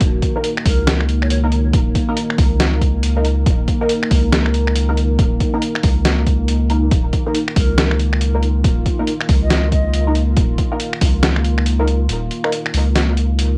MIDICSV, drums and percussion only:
0, 0, Header, 1, 2, 480
1, 0, Start_track
1, 0, Tempo, 431655
1, 10, Time_signature, 4, 2, 24, 8
1, 15099, End_track
2, 0, Start_track
2, 0, Title_t, "Drums"
2, 7, Note_on_c, 9, 42, 84
2, 9, Note_on_c, 9, 36, 123
2, 118, Note_off_c, 9, 42, 0
2, 120, Note_off_c, 9, 36, 0
2, 249, Note_on_c, 9, 36, 63
2, 249, Note_on_c, 9, 42, 59
2, 360, Note_off_c, 9, 36, 0
2, 360, Note_off_c, 9, 42, 0
2, 488, Note_on_c, 9, 42, 84
2, 599, Note_off_c, 9, 42, 0
2, 638, Note_on_c, 9, 26, 63
2, 729, Note_on_c, 9, 36, 110
2, 729, Note_on_c, 9, 46, 98
2, 749, Note_off_c, 9, 26, 0
2, 840, Note_off_c, 9, 36, 0
2, 841, Note_off_c, 9, 46, 0
2, 970, Note_on_c, 9, 38, 122
2, 970, Note_on_c, 9, 42, 82
2, 1081, Note_off_c, 9, 38, 0
2, 1081, Note_off_c, 9, 42, 0
2, 1118, Note_on_c, 9, 26, 51
2, 1210, Note_on_c, 9, 42, 55
2, 1230, Note_off_c, 9, 26, 0
2, 1321, Note_off_c, 9, 42, 0
2, 1359, Note_on_c, 9, 26, 51
2, 1450, Note_on_c, 9, 42, 86
2, 1470, Note_off_c, 9, 26, 0
2, 1561, Note_off_c, 9, 42, 0
2, 1689, Note_on_c, 9, 42, 54
2, 1800, Note_off_c, 9, 42, 0
2, 1929, Note_on_c, 9, 42, 82
2, 1930, Note_on_c, 9, 36, 127
2, 2040, Note_off_c, 9, 42, 0
2, 2041, Note_off_c, 9, 36, 0
2, 2170, Note_on_c, 9, 36, 64
2, 2170, Note_on_c, 9, 42, 58
2, 2281, Note_off_c, 9, 36, 0
2, 2281, Note_off_c, 9, 42, 0
2, 2410, Note_on_c, 9, 42, 86
2, 2521, Note_off_c, 9, 42, 0
2, 2559, Note_on_c, 9, 26, 59
2, 2650, Note_on_c, 9, 36, 114
2, 2650, Note_on_c, 9, 46, 94
2, 2670, Note_off_c, 9, 26, 0
2, 2761, Note_off_c, 9, 36, 0
2, 2761, Note_off_c, 9, 46, 0
2, 2890, Note_on_c, 9, 38, 127
2, 2890, Note_on_c, 9, 42, 82
2, 3001, Note_off_c, 9, 38, 0
2, 3001, Note_off_c, 9, 42, 0
2, 3130, Note_on_c, 9, 36, 68
2, 3131, Note_on_c, 9, 42, 56
2, 3241, Note_off_c, 9, 36, 0
2, 3242, Note_off_c, 9, 42, 0
2, 3370, Note_on_c, 9, 42, 90
2, 3481, Note_off_c, 9, 42, 0
2, 3610, Note_on_c, 9, 42, 55
2, 3721, Note_off_c, 9, 42, 0
2, 3850, Note_on_c, 9, 36, 126
2, 3850, Note_on_c, 9, 42, 78
2, 3961, Note_off_c, 9, 36, 0
2, 3961, Note_off_c, 9, 42, 0
2, 4090, Note_on_c, 9, 36, 67
2, 4090, Note_on_c, 9, 42, 55
2, 4201, Note_off_c, 9, 36, 0
2, 4201, Note_off_c, 9, 42, 0
2, 4328, Note_on_c, 9, 42, 82
2, 4439, Note_off_c, 9, 42, 0
2, 4478, Note_on_c, 9, 26, 63
2, 4569, Note_on_c, 9, 46, 91
2, 4570, Note_on_c, 9, 36, 111
2, 4589, Note_off_c, 9, 26, 0
2, 4680, Note_off_c, 9, 46, 0
2, 4681, Note_off_c, 9, 36, 0
2, 4809, Note_on_c, 9, 38, 124
2, 4809, Note_on_c, 9, 42, 82
2, 4920, Note_off_c, 9, 38, 0
2, 4920, Note_off_c, 9, 42, 0
2, 4957, Note_on_c, 9, 26, 54
2, 5048, Note_on_c, 9, 42, 54
2, 5069, Note_off_c, 9, 26, 0
2, 5160, Note_off_c, 9, 42, 0
2, 5197, Note_on_c, 9, 26, 53
2, 5288, Note_on_c, 9, 42, 88
2, 5308, Note_off_c, 9, 26, 0
2, 5399, Note_off_c, 9, 42, 0
2, 5530, Note_on_c, 9, 42, 52
2, 5641, Note_off_c, 9, 42, 0
2, 5769, Note_on_c, 9, 42, 76
2, 5770, Note_on_c, 9, 36, 126
2, 5881, Note_off_c, 9, 36, 0
2, 5881, Note_off_c, 9, 42, 0
2, 6009, Note_on_c, 9, 42, 55
2, 6010, Note_on_c, 9, 36, 64
2, 6121, Note_off_c, 9, 36, 0
2, 6121, Note_off_c, 9, 42, 0
2, 6248, Note_on_c, 9, 42, 82
2, 6360, Note_off_c, 9, 42, 0
2, 6397, Note_on_c, 9, 26, 64
2, 6487, Note_on_c, 9, 46, 93
2, 6490, Note_on_c, 9, 36, 110
2, 6508, Note_off_c, 9, 26, 0
2, 6598, Note_off_c, 9, 46, 0
2, 6601, Note_off_c, 9, 36, 0
2, 6728, Note_on_c, 9, 38, 125
2, 6728, Note_on_c, 9, 42, 83
2, 6839, Note_off_c, 9, 38, 0
2, 6839, Note_off_c, 9, 42, 0
2, 6968, Note_on_c, 9, 42, 52
2, 6969, Note_on_c, 9, 36, 65
2, 7079, Note_off_c, 9, 42, 0
2, 7081, Note_off_c, 9, 36, 0
2, 7208, Note_on_c, 9, 42, 82
2, 7319, Note_off_c, 9, 42, 0
2, 7448, Note_on_c, 9, 42, 51
2, 7559, Note_off_c, 9, 42, 0
2, 7688, Note_on_c, 9, 42, 74
2, 7690, Note_on_c, 9, 36, 126
2, 7799, Note_off_c, 9, 42, 0
2, 7801, Note_off_c, 9, 36, 0
2, 7928, Note_on_c, 9, 42, 52
2, 7930, Note_on_c, 9, 36, 64
2, 8039, Note_off_c, 9, 42, 0
2, 8041, Note_off_c, 9, 36, 0
2, 8169, Note_on_c, 9, 42, 77
2, 8280, Note_off_c, 9, 42, 0
2, 8316, Note_on_c, 9, 26, 68
2, 8409, Note_on_c, 9, 46, 90
2, 8410, Note_on_c, 9, 36, 113
2, 8427, Note_off_c, 9, 26, 0
2, 8521, Note_off_c, 9, 36, 0
2, 8521, Note_off_c, 9, 46, 0
2, 8649, Note_on_c, 9, 38, 125
2, 8649, Note_on_c, 9, 42, 80
2, 8761, Note_off_c, 9, 38, 0
2, 8761, Note_off_c, 9, 42, 0
2, 8798, Note_on_c, 9, 26, 59
2, 8890, Note_on_c, 9, 42, 51
2, 8909, Note_off_c, 9, 26, 0
2, 9001, Note_off_c, 9, 42, 0
2, 9038, Note_on_c, 9, 26, 56
2, 9129, Note_on_c, 9, 42, 81
2, 9149, Note_off_c, 9, 26, 0
2, 9240, Note_off_c, 9, 42, 0
2, 9369, Note_on_c, 9, 42, 49
2, 9480, Note_off_c, 9, 42, 0
2, 9610, Note_on_c, 9, 36, 117
2, 9610, Note_on_c, 9, 42, 75
2, 9721, Note_off_c, 9, 36, 0
2, 9722, Note_off_c, 9, 42, 0
2, 9850, Note_on_c, 9, 36, 61
2, 9850, Note_on_c, 9, 42, 52
2, 9961, Note_off_c, 9, 36, 0
2, 9961, Note_off_c, 9, 42, 0
2, 10089, Note_on_c, 9, 42, 77
2, 10200, Note_off_c, 9, 42, 0
2, 10236, Note_on_c, 9, 26, 67
2, 10328, Note_on_c, 9, 46, 94
2, 10329, Note_on_c, 9, 36, 106
2, 10347, Note_off_c, 9, 26, 0
2, 10439, Note_off_c, 9, 46, 0
2, 10440, Note_off_c, 9, 36, 0
2, 10567, Note_on_c, 9, 38, 117
2, 10567, Note_on_c, 9, 42, 77
2, 10679, Note_off_c, 9, 38, 0
2, 10679, Note_off_c, 9, 42, 0
2, 10808, Note_on_c, 9, 42, 53
2, 10809, Note_on_c, 9, 36, 64
2, 10919, Note_off_c, 9, 42, 0
2, 10920, Note_off_c, 9, 36, 0
2, 11048, Note_on_c, 9, 42, 76
2, 11159, Note_off_c, 9, 42, 0
2, 11287, Note_on_c, 9, 42, 51
2, 11398, Note_off_c, 9, 42, 0
2, 11527, Note_on_c, 9, 42, 75
2, 11528, Note_on_c, 9, 36, 116
2, 11638, Note_off_c, 9, 42, 0
2, 11640, Note_off_c, 9, 36, 0
2, 11767, Note_on_c, 9, 42, 52
2, 11768, Note_on_c, 9, 36, 62
2, 11878, Note_off_c, 9, 42, 0
2, 11880, Note_off_c, 9, 36, 0
2, 12007, Note_on_c, 9, 42, 79
2, 12118, Note_off_c, 9, 42, 0
2, 12155, Note_on_c, 9, 26, 65
2, 12246, Note_on_c, 9, 46, 99
2, 12248, Note_on_c, 9, 36, 101
2, 12266, Note_off_c, 9, 26, 0
2, 12357, Note_off_c, 9, 46, 0
2, 12359, Note_off_c, 9, 36, 0
2, 12486, Note_on_c, 9, 38, 118
2, 12486, Note_on_c, 9, 42, 80
2, 12597, Note_off_c, 9, 38, 0
2, 12597, Note_off_c, 9, 42, 0
2, 12635, Note_on_c, 9, 26, 57
2, 12727, Note_on_c, 9, 42, 53
2, 12746, Note_off_c, 9, 26, 0
2, 12838, Note_off_c, 9, 42, 0
2, 12875, Note_on_c, 9, 26, 54
2, 12966, Note_on_c, 9, 42, 81
2, 12986, Note_off_c, 9, 26, 0
2, 13078, Note_off_c, 9, 42, 0
2, 13206, Note_on_c, 9, 42, 52
2, 13317, Note_off_c, 9, 42, 0
2, 13445, Note_on_c, 9, 42, 81
2, 13556, Note_off_c, 9, 42, 0
2, 13688, Note_on_c, 9, 42, 54
2, 13799, Note_off_c, 9, 42, 0
2, 13835, Note_on_c, 9, 26, 62
2, 13926, Note_on_c, 9, 42, 82
2, 13946, Note_off_c, 9, 26, 0
2, 14038, Note_off_c, 9, 42, 0
2, 14076, Note_on_c, 9, 26, 61
2, 14166, Note_on_c, 9, 46, 99
2, 14187, Note_off_c, 9, 26, 0
2, 14277, Note_off_c, 9, 46, 0
2, 14408, Note_on_c, 9, 38, 112
2, 14408, Note_on_c, 9, 42, 82
2, 14519, Note_off_c, 9, 38, 0
2, 14519, Note_off_c, 9, 42, 0
2, 14648, Note_on_c, 9, 42, 56
2, 14759, Note_off_c, 9, 42, 0
2, 14888, Note_on_c, 9, 42, 85
2, 14999, Note_off_c, 9, 42, 0
2, 15099, End_track
0, 0, End_of_file